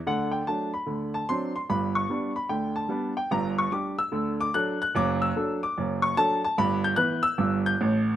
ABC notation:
X:1
M:4/4
L:1/8
Q:"Swing" 1/4=147
K:D
V:1 name="Grand piano"
f g a b2 a =c' c' | b c'2 b g a2 g | _b c' d' e'2 d' f' f' | d' e'2 d'2 c' a a |
b g' f' e'2 g'3 |]
V:2 name="Grand piano" clef=bass
[D,,D,]2 [F,A,D]2 [D,,D,]2 [F,=CD]2 | [G,,,G,,]2 [G,B,D]2 [D,,D,]2 [G,B,D]2 | [G,,,G,,]2 [G,DG]2 [D,,D,]2 [F,DA]2 | [F,,,F,,]2 [F,DA]2 [F,,,F,,]2 [F,DA]2 |
[G,,,G,,]2 [E,B,B]2 [G,,,G,,]2 [A,,,A,,]2 |]